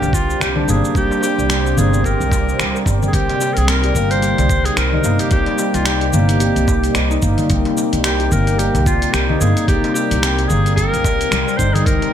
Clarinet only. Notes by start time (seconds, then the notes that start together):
Already playing: G4
0.14 F4
0.42 G4
0.70 G#4
0.97 G4
1.23 G4
1.79 G#4
2.05 A#4
3.07 G#4
3.14 G4
3.53 A#4
3.58 G#4
3.69 A#4
4.11 C5
4.65 G#4
4.77 A#4
5.20 G4
5.32 G4
5.75 F4
5.86 G4
8.05 G4
8.32 A#4
8.59 G4
8.87 F4
9.13 G4
9.41 G#4
9.68 G4
9.94 G4
10.48 G#4
10.76 A#4
11.57 C5
11.74 G#4
11.86 A#4